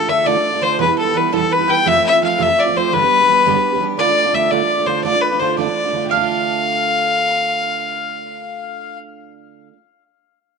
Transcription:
Already playing: A4
0.00 A3 D4
0.07 D3 A3 D4 F4 E5
0.24 D3 A3 D4 F4 D5
0.35 A3 D4 F4
0.52 A3 D4 F4
0.61 D3 A3 D4 F4 C5
0.78 E2 B2 E3 G3 B3 E4 B4
0.87 E3 G3 B3 E4
0.97 A4
1.05 E3 G3 B3 E4
1.13 E3 G3 B3 E4 B4
1.32 E2 B2 E3 G3 B3 E4 A4
1.41 E3 G3 B3 E4
1.51 B4
1.59 E3 G3 B3 E4
1.68 E3 G3 B3 E4 G5
1.85 F2 C3 F3 A3 C4 F4 E5
1.95 F3 A3 C4 F4
2.05 E5
2.12 F3 A3 C4 F4
2.21 F3 A3 C4 F4 F5
2.38 F2 C3 F3 A3 C4 F4 E5
2.42 E5
2.47 F3 A3 C4 F4
2.58 D5
2.66 F3 A3 C4 F4
2.74 F3 A3 C4 F4 C5
2.93 G2 D3 G3 B3 D4 G4 B4
3.02 G3 B3 D4 G4
3.20 G3 B3 D4 G4
3.29 G3 B3 D4 G4
3.45 G2 D3 G3 B3 D4 G4
3.54 G3 B3 D4 G4
3.72 G3 B3 D4 G4
3.80 G3 B3 D4 G4
3.97 D3 A3 D4 F4 D5
4.07 A3 D4 F4
4.18 D5
4.25 A3 D4 F4
4.33 D3 A3 D4 F4 E5
4.51 D3 A3 D4 F4 D5
4.61 D4 F4
4.78 A3 D4 F4
4.86 D3 A3 D4 F4 C5
5.04 D3 A3 D4 F4 D5
5.14 A3 D4 F4
5.22 B4
5.31 A3 D4 F4
5.40 D3 A3 D4 F4 C5
5.57 D3 A3 D4 F4 D5
5.65 D4 F4
5.69 A3
5.85 A3 D4 F4
5.92 D3 A3 D4 F4
6.05 D3 G5
6.11 A3 F5
6.17 D4
6.21 F4

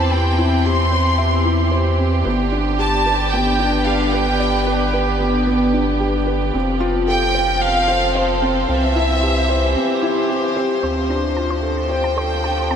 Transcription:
Already playing: E2 E3 C4 E4 G4 C5 A5
0.12 C4 G5
0.38 E4
0.66 G4 C6
0.92 C5
1.18 E5
1.45 E4
1.71 C5
1.98 C4
2.25 G1 D3 B3
2.49 B3 D4
2.79 G4 A5
2.83 B4
3.06 B4
3.32 B3 G5
3.59 D4
3.85 G4 F5
4.12 B4 G5
4.40 D5
4.67 B4
4.93 B4
5.20 B3
5.47 B3
5.74 D4
6.00 G4
6.27 B4
6.53 F1 F3 C4
6.80 C4 F4
7.07 A4 G5
7.17 C5
7.35 C5
7.50 A4
7.61 F5
7.88 C5
8.15 C5
8.42 C4
8.68 C2 E3 C4 E5
8.96 E4
9.23 G4
9.44 G4
9.49 C5
9.76 C4
10.03 E4
10.29 G4
10.56 C5
10.83 D2 F3 C4 C5
11.08 D4 A5
11.36 F4 A4 A5
11.50 C5
11.63 A4
11.77 A5
11.89 C5 G5
12.04 A5
12.16 A4 C5
12.44 A4 A5
12.70 C4 A5

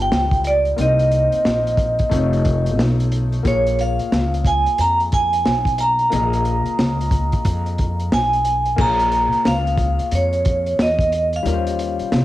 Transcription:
Already playing: G3 D#4 F4 B4
0.02 G5
0.12 C#2, snare
0.31 kick, closed hi-hat
0.44 D5, closed hi-hat
0.65 closed hi-hat
0.76 C2 A#3 C4 D#4 C5, closed hi-hat
0.81 D#5
0.99 closed hi-hat
1.12 closed hi-hat
1.32 muted upright bass stroke, closed hi-hat
1.45 A#1, snare
1.67 closed hi-hat
1.77 kick, closed hi-hat
1.99 muted upright bass stroke, kick, closed hi-hat
2.09 F1 A3 D#4 F4, kick, closed hi-hat
2.13 C#5
2.33 closed hi-hat
2.45 kick, closed hi-hat
2.66 closed hi-hat
2.79 B1, snare
3.00 closed hi-hat
3.12 closed hi-hat
3.32 closed hi-hat
3.43 A#1 A#3 F4 G#4 C#5, kick, closed hi-hat
3.47 C#5
3.67 closed hi-hat
3.79 F5, closed hi-hat
3.99 muted upright bass stroke, closed hi-hat
4.12 C#2, snare
4.34 closed hi-hat
4.45 G#5, kick, closed hi-hat
4.66 muted upright bass stroke, closed hi-hat
4.78 F2 A#5, closed hi-hat
5.00 closed hi-hat
5.12 G#5, kick, closed hi-hat
5.33 closed hi-hat
5.46 B1, snare
5.65 kick, closed hi-hat
5.78 A#5, closed hi-hat
5.99 closed hi-hat
6.10 A#1 A#3 F4 G#4 D#5, closed hi-hat
6.33 closed hi-hat
6.45 closed hi-hat
6.66 muted upright bass stroke, closed hi-hat
6.79 C#2, snare
7.01 closed hi-hat
7.11 kick, closed hi-hat
7.32 muted upright bass stroke, kick, closed hi-hat
7.45 F2, kick, closed hi-hat
7.66 closed hi-hat
7.78 kick, closed hi-hat
8.00 closed hi-hat
8.12 B1 G#5, snare
8.33 closed hi-hat
8.45 closed hi-hat
8.66 closed hi-hat
8.76 A#1 A#3 F4 G#4 C#5, kick, crash
8.81 A#5
9.00 closed hi-hat
9.12 closed hi-hat
9.33 muted upright bass stroke, closed hi-hat
9.45 C#2 F5, snare
9.67 closed hi-hat
9.78 kick, closed hi-hat
9.99 muted upright bass stroke, closed hi-hat
10.11 F2 C#5, closed hi-hat
10.33 closed hi-hat
10.45 kick, closed hi-hat
10.66 closed hi-hat
10.79 E2 D#5, snare
10.99 kick, closed hi-hat
11.12 closed hi-hat
11.33 F5, closed hi-hat
11.43 D#2 G3 C#4 F4 A#4, closed hi-hat
11.53 C5
11.67 closed hi-hat
11.79 closed hi-hat
11.99 muted upright bass stroke, closed hi-hat
12.12 C2, snare

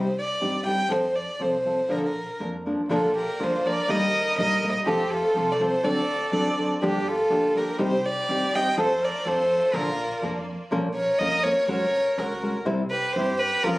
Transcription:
Already playing: C2 C5
0.19 D5
0.41 G2 G3 C4 D#4 G4
0.65 G3 C4 D#4 G4 G5
0.89 F2 F3 C4 F4 A4 C5
1.15 D5
1.39 C2 F3 C4 F4 A4 C5
1.65 F3 C4 F4 A4
1.89 A#1 A#2 D3 F3 A#3 D4 A#4
1.98 A4
2.06 A#4
2.40 F2 F3 A#3 D4 A#4
2.66 F3 A#3 D4 A#4
2.88 A#1 A#2 D3 F3 A#3 D4 F4 A4 A#4 D5
3.14 G4 A#4
3.39 D2 F3 A#3 D4 F4 A#4
3.44 C5
3.65 F3 A#3 D4 A#4 D5
3.88 D#2 D#3 G3 A#3 D#4 A#4 D#5
4.38 A#1 G3 A#3 D#4 A#4 D#5
4.63 G3 A#3 D#4 A#4
4.86 F2 F3 A3 C4 F4 G4 A4 C5
5.10 F4 A4
5.34 C2 F3 C4 F4 A4
5.52 A#4 D5
5.59 F3 C4 F4 A4 C5
5.83 D2 D3 F#3 C4 D4 F#4 A4 D5
5.89 A4
6.31 D2 F#3 C4 D4 A4 D5
6.37 A4
6.57 F#3 C4 D4 A4
6.82 G1 G2 D3 F3 G3 A#3 D4 F4 G4
7.08 F4 A4
7.30 D2 F3 A#3 D4 G4
7.55 F3 A#3 D4 G4 A#4
7.59 G4
7.78 C2 C3 G3 C4 D#4 G4 C5
7.83 G4
8.06 G4 D5
8.29 D#2 G3 C4 D#4 G4
8.54 G3 C4 D#4 G4 D#5 G5
8.77 F2 F3 A3 C4 F4 A4 C5
9.03 A#4 D5
9.25 F2 F3 C4 F4 A4 C5
9.73 A#1 A#2 D3 F3 A#3 D4 F4 A#4 D5
10.22 F2 F3 A#3 D4 A#4
10.71 A#1 A#2 F3 A#3 C#4 F4 A#4
10.95 A#4 C#5
11.19 F2 A#3 C#4 F4 A#4 D#5
11.44 A#3 C#4 F4 A#4 C#5
11.68 F#1 F#3 G#3 C#4 F#4 A#4 C#5
12.17 C#2 G#3 C#4 F#4 A#4
12.42 G#3 C#4 F#4 A#4
12.65 C2 C3 G3 C4 E4 C5
12.91 G4 B4
13.13 G2 G3 C4 G4 C5
13.17 E4 C5
13.39 G4 B4
13.63 F2 F3 C#4 F4 A#4

